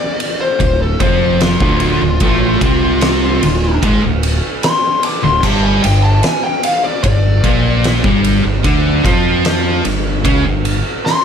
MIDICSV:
0, 0, Header, 1, 5, 480
1, 0, Start_track
1, 0, Key_signature, -1, "minor"
1, 0, Tempo, 803213
1, 1324, Time_signature, 4, 2, 24, 8
1, 6720, End_track
2, 0, Start_track
2, 0, Title_t, "Lead electric guitar"
2, 0, Program_c, 0, 29
2, 0, Note_on_c, 0, 74, 83
2, 229, Note_off_c, 0, 74, 0
2, 243, Note_on_c, 0, 72, 83
2, 475, Note_off_c, 0, 72, 0
2, 487, Note_on_c, 0, 69, 89
2, 598, Note_off_c, 0, 69, 0
2, 601, Note_on_c, 0, 72, 90
2, 835, Note_off_c, 0, 72, 0
2, 844, Note_on_c, 0, 65, 94
2, 2263, Note_off_c, 0, 65, 0
2, 2771, Note_on_c, 0, 84, 106
2, 3002, Note_off_c, 0, 84, 0
2, 3019, Note_on_c, 0, 86, 83
2, 3128, Note_off_c, 0, 86, 0
2, 3131, Note_on_c, 0, 84, 91
2, 3245, Note_off_c, 0, 84, 0
2, 3249, Note_on_c, 0, 81, 100
2, 3364, Note_off_c, 0, 81, 0
2, 3368, Note_on_c, 0, 80, 91
2, 3483, Note_off_c, 0, 80, 0
2, 3486, Note_on_c, 0, 79, 98
2, 3603, Note_off_c, 0, 79, 0
2, 3606, Note_on_c, 0, 81, 86
2, 3722, Note_off_c, 0, 81, 0
2, 3727, Note_on_c, 0, 80, 79
2, 3843, Note_off_c, 0, 80, 0
2, 3847, Note_on_c, 0, 79, 75
2, 3963, Note_off_c, 0, 79, 0
2, 3969, Note_on_c, 0, 77, 91
2, 4084, Note_off_c, 0, 77, 0
2, 4089, Note_on_c, 0, 74, 93
2, 4198, Note_off_c, 0, 74, 0
2, 4205, Note_on_c, 0, 74, 107
2, 4671, Note_off_c, 0, 74, 0
2, 6605, Note_on_c, 0, 84, 103
2, 6720, Note_off_c, 0, 84, 0
2, 6720, End_track
3, 0, Start_track
3, 0, Title_t, "Distorted electric guitar"
3, 0, Program_c, 1, 30
3, 357, Note_on_c, 1, 38, 78
3, 551, Note_off_c, 1, 38, 0
3, 602, Note_on_c, 1, 41, 85
3, 604, Note_on_c, 1, 53, 98
3, 956, Note_off_c, 1, 41, 0
3, 957, Note_off_c, 1, 53, 0
3, 964, Note_on_c, 1, 38, 87
3, 967, Note_on_c, 1, 50, 93
3, 1197, Note_off_c, 1, 38, 0
3, 1198, Note_off_c, 1, 50, 0
3, 1207, Note_on_c, 1, 38, 69
3, 1318, Note_off_c, 1, 38, 0
3, 1321, Note_on_c, 1, 45, 89
3, 1325, Note_on_c, 1, 57, 97
3, 1556, Note_off_c, 1, 45, 0
3, 1558, Note_off_c, 1, 57, 0
3, 1563, Note_on_c, 1, 48, 98
3, 1569, Note_on_c, 1, 60, 93
3, 2038, Note_off_c, 1, 48, 0
3, 2041, Note_off_c, 1, 60, 0
3, 2047, Note_on_c, 1, 38, 76
3, 2238, Note_off_c, 1, 38, 0
3, 2286, Note_on_c, 1, 44, 104
3, 2290, Note_on_c, 1, 56, 104
3, 2399, Note_off_c, 1, 44, 0
3, 2401, Note_off_c, 1, 56, 0
3, 2408, Note_on_c, 1, 38, 76
3, 2599, Note_off_c, 1, 38, 0
3, 3126, Note_on_c, 1, 38, 77
3, 3245, Note_off_c, 1, 38, 0
3, 3248, Note_on_c, 1, 43, 82
3, 3249, Note_on_c, 1, 55, 99
3, 3480, Note_off_c, 1, 43, 0
3, 3480, Note_off_c, 1, 55, 0
3, 3487, Note_on_c, 1, 43, 74
3, 3679, Note_off_c, 1, 43, 0
3, 4210, Note_on_c, 1, 43, 72
3, 4400, Note_off_c, 1, 43, 0
3, 4444, Note_on_c, 1, 46, 82
3, 4448, Note_on_c, 1, 58, 100
3, 4797, Note_off_c, 1, 46, 0
3, 4799, Note_off_c, 1, 58, 0
3, 4807, Note_on_c, 1, 43, 87
3, 4809, Note_on_c, 1, 55, 100
3, 5038, Note_off_c, 1, 43, 0
3, 5040, Note_off_c, 1, 55, 0
3, 5047, Note_on_c, 1, 43, 72
3, 5164, Note_on_c, 1, 50, 77
3, 5166, Note_off_c, 1, 43, 0
3, 5167, Note_on_c, 1, 62, 97
3, 5397, Note_off_c, 1, 50, 0
3, 5398, Note_off_c, 1, 62, 0
3, 5403, Note_on_c, 1, 53, 90
3, 5408, Note_on_c, 1, 65, 99
3, 5875, Note_off_c, 1, 53, 0
3, 5878, Note_off_c, 1, 65, 0
3, 5886, Note_on_c, 1, 43, 71
3, 6076, Note_off_c, 1, 43, 0
3, 6124, Note_on_c, 1, 49, 94
3, 6129, Note_on_c, 1, 61, 112
3, 6236, Note_off_c, 1, 49, 0
3, 6238, Note_off_c, 1, 61, 0
3, 6245, Note_on_c, 1, 43, 75
3, 6435, Note_off_c, 1, 43, 0
3, 6720, End_track
4, 0, Start_track
4, 0, Title_t, "Fingered electric bass"
4, 0, Program_c, 2, 33
4, 361, Note_on_c, 2, 26, 83
4, 585, Note_off_c, 2, 26, 0
4, 601, Note_on_c, 2, 29, 100
4, 939, Note_off_c, 2, 29, 0
4, 959, Note_on_c, 2, 26, 98
4, 1185, Note_off_c, 2, 26, 0
4, 1205, Note_on_c, 2, 26, 85
4, 1316, Note_off_c, 2, 26, 0
4, 1321, Note_on_c, 2, 33, 86
4, 1546, Note_off_c, 2, 33, 0
4, 1562, Note_on_c, 2, 36, 95
4, 2020, Note_off_c, 2, 36, 0
4, 2050, Note_on_c, 2, 26, 87
4, 2271, Note_off_c, 2, 26, 0
4, 2288, Note_on_c, 2, 32, 98
4, 2399, Note_off_c, 2, 32, 0
4, 2413, Note_on_c, 2, 26, 74
4, 2633, Note_off_c, 2, 26, 0
4, 3129, Note_on_c, 2, 26, 76
4, 3239, Note_off_c, 2, 26, 0
4, 3247, Note_on_c, 2, 31, 99
4, 3470, Note_off_c, 2, 31, 0
4, 3492, Note_on_c, 2, 31, 80
4, 3712, Note_off_c, 2, 31, 0
4, 4209, Note_on_c, 2, 31, 77
4, 4431, Note_off_c, 2, 31, 0
4, 4447, Note_on_c, 2, 34, 101
4, 4782, Note_off_c, 2, 34, 0
4, 4807, Note_on_c, 2, 31, 97
4, 5029, Note_off_c, 2, 31, 0
4, 5050, Note_on_c, 2, 31, 81
4, 5159, Note_off_c, 2, 31, 0
4, 5168, Note_on_c, 2, 38, 91
4, 5389, Note_off_c, 2, 38, 0
4, 5407, Note_on_c, 2, 41, 96
4, 5860, Note_off_c, 2, 41, 0
4, 5886, Note_on_c, 2, 31, 86
4, 6107, Note_off_c, 2, 31, 0
4, 6126, Note_on_c, 2, 37, 91
4, 6236, Note_off_c, 2, 37, 0
4, 6246, Note_on_c, 2, 31, 76
4, 6467, Note_off_c, 2, 31, 0
4, 6720, End_track
5, 0, Start_track
5, 0, Title_t, "Drums"
5, 119, Note_on_c, 9, 51, 73
5, 179, Note_off_c, 9, 51, 0
5, 359, Note_on_c, 9, 36, 90
5, 361, Note_on_c, 9, 51, 89
5, 418, Note_off_c, 9, 36, 0
5, 421, Note_off_c, 9, 51, 0
5, 599, Note_on_c, 9, 36, 108
5, 599, Note_on_c, 9, 51, 75
5, 659, Note_off_c, 9, 36, 0
5, 659, Note_off_c, 9, 51, 0
5, 840, Note_on_c, 9, 51, 87
5, 847, Note_on_c, 9, 38, 112
5, 899, Note_off_c, 9, 51, 0
5, 907, Note_off_c, 9, 38, 0
5, 959, Note_on_c, 9, 36, 105
5, 1019, Note_off_c, 9, 36, 0
5, 1075, Note_on_c, 9, 51, 68
5, 1135, Note_off_c, 9, 51, 0
5, 1316, Note_on_c, 9, 51, 86
5, 1320, Note_on_c, 9, 36, 107
5, 1376, Note_off_c, 9, 51, 0
5, 1380, Note_off_c, 9, 36, 0
5, 1562, Note_on_c, 9, 36, 111
5, 1564, Note_on_c, 9, 51, 79
5, 1622, Note_off_c, 9, 36, 0
5, 1623, Note_off_c, 9, 51, 0
5, 1800, Note_on_c, 9, 51, 98
5, 1808, Note_on_c, 9, 38, 113
5, 1860, Note_off_c, 9, 51, 0
5, 1867, Note_off_c, 9, 38, 0
5, 2048, Note_on_c, 9, 51, 73
5, 2108, Note_off_c, 9, 51, 0
5, 2287, Note_on_c, 9, 36, 104
5, 2288, Note_on_c, 9, 51, 103
5, 2347, Note_off_c, 9, 36, 0
5, 2347, Note_off_c, 9, 51, 0
5, 2529, Note_on_c, 9, 51, 77
5, 2589, Note_off_c, 9, 51, 0
5, 2767, Note_on_c, 9, 51, 93
5, 2774, Note_on_c, 9, 38, 105
5, 2827, Note_off_c, 9, 51, 0
5, 2834, Note_off_c, 9, 38, 0
5, 3006, Note_on_c, 9, 51, 73
5, 3066, Note_off_c, 9, 51, 0
5, 3246, Note_on_c, 9, 36, 108
5, 3246, Note_on_c, 9, 49, 95
5, 3306, Note_off_c, 9, 36, 0
5, 3306, Note_off_c, 9, 49, 0
5, 3488, Note_on_c, 9, 51, 83
5, 3548, Note_off_c, 9, 51, 0
5, 3722, Note_on_c, 9, 51, 93
5, 3730, Note_on_c, 9, 38, 102
5, 3782, Note_off_c, 9, 51, 0
5, 3789, Note_off_c, 9, 38, 0
5, 3964, Note_on_c, 9, 51, 80
5, 4024, Note_off_c, 9, 51, 0
5, 4204, Note_on_c, 9, 51, 96
5, 4206, Note_on_c, 9, 36, 89
5, 4264, Note_off_c, 9, 51, 0
5, 4265, Note_off_c, 9, 36, 0
5, 4445, Note_on_c, 9, 36, 106
5, 4446, Note_on_c, 9, 51, 69
5, 4505, Note_off_c, 9, 36, 0
5, 4506, Note_off_c, 9, 51, 0
5, 4686, Note_on_c, 9, 51, 86
5, 4694, Note_on_c, 9, 38, 104
5, 4746, Note_off_c, 9, 51, 0
5, 4753, Note_off_c, 9, 38, 0
5, 4806, Note_on_c, 9, 36, 118
5, 4865, Note_off_c, 9, 36, 0
5, 4927, Note_on_c, 9, 51, 75
5, 4986, Note_off_c, 9, 51, 0
5, 5165, Note_on_c, 9, 51, 95
5, 5166, Note_on_c, 9, 36, 105
5, 5225, Note_off_c, 9, 36, 0
5, 5225, Note_off_c, 9, 51, 0
5, 5406, Note_on_c, 9, 36, 109
5, 5410, Note_on_c, 9, 51, 76
5, 5465, Note_off_c, 9, 36, 0
5, 5470, Note_off_c, 9, 51, 0
5, 5646, Note_on_c, 9, 51, 85
5, 5653, Note_on_c, 9, 38, 109
5, 5706, Note_off_c, 9, 51, 0
5, 5713, Note_off_c, 9, 38, 0
5, 5886, Note_on_c, 9, 51, 72
5, 5945, Note_off_c, 9, 51, 0
5, 6124, Note_on_c, 9, 36, 105
5, 6126, Note_on_c, 9, 51, 92
5, 6184, Note_off_c, 9, 36, 0
5, 6186, Note_off_c, 9, 51, 0
5, 6365, Note_on_c, 9, 51, 69
5, 6425, Note_off_c, 9, 51, 0
5, 6610, Note_on_c, 9, 38, 57
5, 6670, Note_off_c, 9, 38, 0
5, 6720, End_track
0, 0, End_of_file